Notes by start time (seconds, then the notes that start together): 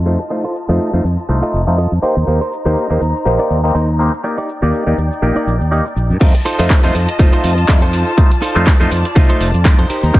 Already playing: F2 F4 D#5 A5
0.06 A3 D#4 F4 C5, muted clean electric guitar stroke, shaker
0.20 shaker
0.30 A3 D#4 F4 C5, muted clean electric guitar stroke, shaker
0.44 F4 A4 C5, shaker
0.56 shaker
0.69 F2 A3 D#4 F4 A4 C5 D#5, shaker
0.80 shaker
0.93 F2 A3 D#4 F4 C5, shaker
1.04 F2, shaker
1.19 shaker
1.29 C2 A3 D#4 F4 C5, muted clean electric guitar stroke, shaker
1.42 F4 A4 D#5, shaker
1.54 F1, shaker
1.67 F2 A3 D#4 F4 C5, shaker
1.78 F4 A4 D#5, shaker
1.92 F2, shaker
2.02 A#3 D#4 G4 A#4 C5 A#5, muted fingered electric bass stroke, shaker
2.16 D#2, shaker
2.27 D#2 A#3 D#4 G4 C5, shaker
2.41 D#4 A#4 C5, shaker
2.53 shaker
2.65 D#2 A#3 D#4 G4 A#4 C5, shaker
2.77 shaker
2.90 D#2 A#3 D#4 G4 C5, shaker
3.01 D#2, shaker
3.15 shaker
3.25 A#1 A#3 D#4 G4 C5, muted clean electric guitar stroke, shaker
3.39 D#4 A#4 D5, shaker
3.50 D#2, shaker
3.63 A#3 D#4 G4 C5, shaker
3.74 D#2 D#4 A#4 C5, shaker
3.99 A#3 D#4 G4 C5, muted clean electric guitar stroke, shaker
4.14 shaker
4.24 A#3 D#4 G4 D5 G5, muted clean electric guitar stroke, shaker
4.38 D#4 G4 D5, shaker
4.49 shaker
4.62 D#2 A#3 D#4 G4 D5, shaker
4.74 shaker
4.86 D#2 A#3 D#4 G4 D5, shaker
4.98 D#2, shaker
5.12 shaker
5.22 A#1 A#3 D#4 G4 D5, muted clean electric guitar stroke, shaker
5.36 D#4 G4 D5, shaker
5.47 A#1, shaker
5.61 D#2, shaker
5.71 A#3 D#4 G4 D5 D#5, shaker
5.86 shaker
5.96 A#1, muted clean electric guitar stroke, shaker
6.10 G2, shaker
6.20 F2 A3 D#4 F4 C5 D#5 A5, kick, closed hi-hat, crash, shaker
6.35 closed hi-hat, shaker
6.45 D#4 F4 A4 C5, open hi-hat, shaker
6.59 F2 A3 D#4 F4 C5, closed hi-hat, shaker
6.70 kick, clap, closed hi-hat, shaker
6.83 F2 A3 D#4 F4 A4 C5, shaker
6.95 F2, open hi-hat, shaker
7.08 closed hi-hat, shaker
7.19 F1 A3 D#4 F4 C5, kick, closed hi-hat, shaker
7.33 D#4 F4 A4 C5, closed hi-hat, shaker
7.44 F2, open hi-hat, shaker
7.58 closed hi-hat, shaker
7.68 F2 A3 D#4 F4 D5, kick, clap, closed hi-hat, shaker
7.82 D#4 F4 A4 C5, closed hi-hat
7.93 open hi-hat, shaker
8.07 shaker
8.17 A3 D#4 F4 C5 D5, kick, closed hi-hat, shaker
8.31 closed hi-hat, shaker
8.42 D#4 F4 A4 C5, open hi-hat, shaker
8.55 F2 A3 D#4 F4 C5, closed hi-hat, shaker
8.67 kick, clap, closed hi-hat, shaker
8.80 F2 A3 D#4 F4 A4 C5, shaker
8.91 F2, open hi-hat, shaker
9.05 closed hi-hat, shaker
9.15 C2 A3 D#4 F4 C5, kick, closed hi-hat, shaker
9.29 D#4 F4 A4 C5, closed hi-hat, shaker
9.40 F1, open hi-hat, shaker
9.54 F2, closed hi-hat, shaker
9.65 A3 D#4 F4 D5, muted clean electric guitar stroke, kick, clap, closed hi-hat, shaker
9.78 F2 D#4 F4 A4 C5, closed hi-hat
9.89 D#4 G4 A#4 C5 A#5, muted fingered electric bass stroke, open hi-hat, shaker
10.03 D#2, shaker
10.14 A#3 D#4 G4 C5, kick, closed hi-hat, shaker